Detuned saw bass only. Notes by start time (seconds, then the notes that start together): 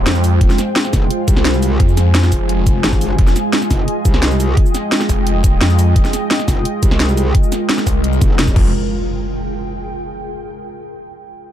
0.06 F2
0.41 F1
1.80 F2
2.32 F1
2.66 F1
3.18 F1
5.09 F1
5.61 F2
5.96 F1
7.87 C2
8.56 F1